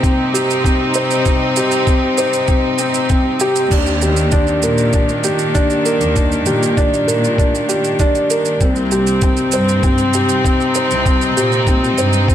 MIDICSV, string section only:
0, 0, Header, 1, 2, 480
1, 0, Start_track
1, 0, Key_signature, -3, "major"
1, 0, Tempo, 612245
1, 993, Time_signature, 4, 2, 24, 8
1, 9682, End_track
2, 0, Start_track
2, 0, Title_t, "String section"
2, 0, Program_c, 0, 48
2, 0, Note_on_c, 0, 48, 93
2, 0, Note_on_c, 0, 58, 64
2, 0, Note_on_c, 0, 60, 80
2, 0, Note_on_c, 0, 63, 87
2, 0, Note_on_c, 0, 67, 66
2, 608, Note_off_c, 0, 58, 0
2, 2912, Note_off_c, 0, 48, 0
2, 2914, Note_off_c, 0, 63, 0
2, 2915, Note_on_c, 0, 51, 82
2, 3078, Note_on_c, 0, 58, 80
2, 3171, Note_on_c, 0, 62, 68
2, 4096, Note_off_c, 0, 60, 0
2, 6753, Note_on_c, 0, 48, 84
2, 6754, Note_off_c, 0, 51, 0
2, 6759, Note_off_c, 0, 62, 0
2, 6823, Note_on_c, 0, 60, 96
2, 7155, Note_on_c, 0, 63, 77
2, 7805, Note_off_c, 0, 58, 0
2, 9682, Note_off_c, 0, 48, 0
2, 9682, Note_off_c, 0, 60, 0
2, 9682, Note_off_c, 0, 63, 0
2, 9682, Note_off_c, 0, 67, 0
2, 9682, End_track
0, 0, End_of_file